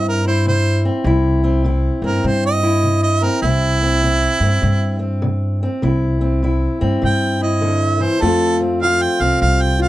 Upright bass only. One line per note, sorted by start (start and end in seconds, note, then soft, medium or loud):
0.00 0.87 G2 medium
1.04 1.88 C2 loud
2.02 2.21 G2 medium
2.24 3.26 G2 medium
3.42 4.26 C2 medium
4.40 4.59 G2 medium
4.63 5.65 G2 medium
5.83 6.66 C2 medium
6.82 7.00 G2 medium
7.03 8.05 G2 medium
8.22 9.05 F2 medium
9.20 9.38 C2 medium
9.42 9.88 C2 medium